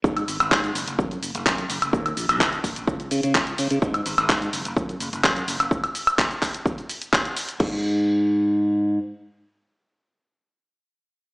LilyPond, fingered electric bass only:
\new Staff \with { instrumentName = "Fingered electric bass" } { \clef bass \time 4/4 \key dis \minor \tempo 4 = 127 gis,16 r16 gis,,16 gis,,16 gis,16 r16 fis,,16 fis,,16 fis,16 r16 fis,,16 fis,,16 fis,16 r16 fis,,16 fis,,16 | dis,16 r16 ais,,16 ais,,16 dis,16 r16 ais,,16 ais,,16 cis,16 r16 cis16 cis16 cis,16 r16 cis16 cis16 | gis,16 r16 gis,,16 gis,,16 gis,16 r16 fis,,16 fis,,16 fis,16 r16 fis,,16 fis,,16 fis,16 r16 fis,,16 fis,,16 | r1 |
gis,2. r4 | r1 | }